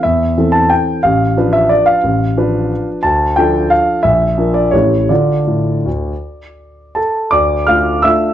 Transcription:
0.03 0.36 E2 soft
0.03 0.53 E5 medium
0.37 1.00 E3 soft
0.37 1.00 C4 soft
0.37 1.01 A4 soft
0.52 0.70 A5 medium
0.69 1.03 G5 medium
1.03 1.36 A1 soft
1.03 1.53 F5 medium
1.37 2.00 F3 soft
1.37 2.00 D4 soft
1.37 2.00 B4 soft
1.53 1.70 E5 medium
1.69 1.87 D5 medium
1.86 2.86 F5 medium
2.04 2.35 A1 soft
2.37 3.00 F3 soft
2.37 3.00 D4 soft
2.37 3.01 B4 soft
3.03 3.36 D2 soft
3.03 3.36 A5 medium
3.36 4.01 F3 soft
3.36 4.01 D4 soft
3.36 4.01 A4 soft
3.36 3.71 G5 medium
3.70 4.04 F5 medium
4.03 4.36 A#1 soft
4.03 4.54 E5 medium
4.37 4.70 F3 soft
4.37 4.70 D4 soft
4.37 4.70 A#4 soft
4.54 4.73 D5 medium
4.71 5.09 A1 soft
4.71 5.07 A3 soft
4.71 5.07 E4 soft
4.71 5.07 G4 soft
4.71 5.09 C#5 medium
5.09 5.37 D3 soft
5.09 5.40 D4 soft
5.09 5.41 F4 soft
5.09 7.15 D5 soft
5.47 5.74 A2 soft
5.86 6.12 D2 soft
6.95 7.30 A4 soft
6.95 7.32 A5 soft
7.31 7.67 D2 soft
7.31 7.65 D5 soft
7.31 7.67 D6 medium
7.67 8.00 A3 soft
7.67 8.01 D4 soft
7.67 8.01 F4 soft
7.67 8.02 F5 soft
7.67 8.03 F6 medium
8.02 8.34 A3 soft
8.02 8.34 D4 soft
8.02 8.34 F4 soft
8.02 8.34 E5 soft
8.02 8.34 E6 medium

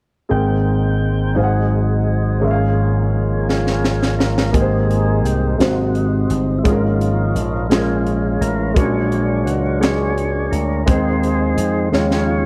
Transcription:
0.29 1.33 G#1 medium
0.29 1.32 G#2 soft
0.29 1.36 D#3 soft
0.29 4.50 G#3 soft
0.29 1.36 A#3 soft
0.29 1.36 C4 soft
0.29 2.41 C4 soft
0.29 1.34 G#4 soft
0.29 1.37 A#4 soft
0.29 1.37 G5 soft
0.29 1.36 G5 soft
1.35 2.39 G#1 medium
1.35 2.38 G#2 soft
1.35 2.42 F#3 soft
1.35 2.42 D#4 soft
1.35 2.40 G#4 soft
1.35 3.48 G#4 soft
1.35 2.43 C5 soft
1.35 1.44 F5 soft
1.44 2.46 F#5 medium
2.39 4.50 G#1 medium
2.39 3.44 G#2 soft
2.39 4.52 F3 soft
2.39 4.52 A#3 soft
2.39 4.49 C#4 soft
2.39 3.49 C#4 soft
2.39 4.49 G#4 soft
2.39 4.50 A#4 soft
2.45 2.50 E5 soft
2.51 4.54 F5 medium
3.49 4.51 C#4 soft
3.49 4.51 F4 soft
3.49 4.15 G#4 medium
3.49 snare soft
3.67 snare soft
3.84 snare medium
4.03 snare medium
4.19 4.55 A#4 medium
4.19 snare medium
4.38 snare medium
4.52 5.24 G#1 medium
4.52 5.55 G#2 soft
4.52 5.55 G#3 soft
4.52 5.39 A#3 medium
4.52 5.56 A#3 soft
4.52 5.56 C4 soft
4.52 5.56 D#4 soft
4.52 5.39 G4 medium
4.52 5.40 G#4 soft
4.52 5.27 G#4 medium
4.52 4.61 A#4 soft
4.52 kick medium
4.52 closed hi-hat medium
4.61 5.43 C5 medium
4.91 closed hi-hat soft
5.24 5.57 C2 medium
5.24 5.61 G4 medium
5.24 closed hi-hat medium
5.58 6.26 G#1 medium
5.58 6.61 C3 soft
5.58 6.07 F#3 soft
5.58 6.45 G#3 soft
5.58 6.08 A#3 soft
5.58 6.45 D#4 soft
5.58 6.45 F#4 soft
5.58 6.33 F#4 medium
5.58 6.46 C5 soft
5.58 snare medium
5.58 closed hi-hat medium
5.62 6.63 C4 soft
5.62 6.30 D#4 soft
5.95 closed hi-hat soft
6.30 6.63 G1 medium
6.30 6.60 D#4 medium
6.30 closed hi-hat medium
6.59 6.66 E4 medium
6.64 7.32 G#1 medium
6.64 7.67 G#2 soft
6.64 7.67 F3 soft
6.64 7.50 G#3 medium
6.64 7.67 A#3 soft
6.64 7.51 C#4 soft
6.64 7.67 C#4 soft
6.64 7.67 D#4 soft
6.64 7.69 F4 medium
6.64 7.51 F4 medium
6.64 6.72 G#4 medium
6.64 kick medium
6.64 closed hi-hat medium
6.72 7.55 A#4 medium
7.01 closed hi-hat soft
7.35 8.37 A#1 medium
7.35 closed hi-hat medium
7.70 8.56 G#3 soft
7.70 8.56 C#4 soft
7.70 8.73 C#4 soft
7.70 8.72 F4 medium
7.70 8.57 F4 soft
7.70 8.43 G#4 medium
7.70 7.78 G#4 soft
7.70 snare medium
7.70 closed hi-hat medium
7.78 8.60 A#4 medium
8.07 closed hi-hat soft
8.41 8.74 A1 medium
8.41 8.74 A#4 medium
8.41 closed hi-hat medium
8.74 9.46 A#1 medium
8.74 9.78 A#2 soft
8.74 9.79 F#3 soft
8.74 9.61 G#3 medium
8.74 9.79 G#3 soft
8.74 8.82 C#4 soft
8.74 9.80 D4 medium
8.74 9.62 F#4 medium
8.74 9.50 G#4 medium
8.74 9.62 A#4 medium
8.74 9.79 C#5 medium
8.74 kick medium
8.74 closed hi-hat medium
8.82 9.65 D4 medium
9.12 closed hi-hat soft
9.46 10.48 C#2 medium
9.46 9.83 F#4 medium
9.46 closed hi-hat medium
9.80 10.13 F#3 soft
9.80 10.13 G#3 soft
9.80 10.67 G#3 soft
9.80 10.84 D4 soft
9.80 10.68 D4 soft
9.80 10.68 F#4 soft
9.80 10.54 G#4 medium
9.80 10.83 C#5 medium
9.80 10.68 C#5 medium
9.80 snare medium
9.80 closed hi-hat medium
10.18 closed hi-hat soft
10.51 10.85 D2 medium
10.51 10.88 A#4 medium
10.51 closed hi-hat medium
10.86 11.54 D#2 medium
10.86 11.89 D#3 soft
10.86 11.73 G#3 medium
10.86 11.89 G#3 soft
10.86 11.73 C4 medium
10.86 11.89 C4 soft
10.86 11.73 D#4 medium
10.86 11.89 D#4 medium
10.86 11.89 G#4 medium
10.86 11.96 C5 medium
10.86 11.74 C5 medium
10.86 kick medium
10.86 closed hi-hat medium
11.23 closed hi-hat soft
11.57 11.90 F2 medium
11.57 closed hi-hat medium
11.92 12.46 D#2 medium
11.92 12.46 C#3 soft
11.92 12.46 F3 soft
11.92 12.46 G#3 soft
11.92 12.46 C#4 soft
11.92 12.46 D#4 soft
11.92 12.46 F4 soft
11.92 12.46 F4 medium
11.92 12.46 G#4 medium
11.92 12.46 C#5 medium
11.92 snare soft
12.11 snare soft

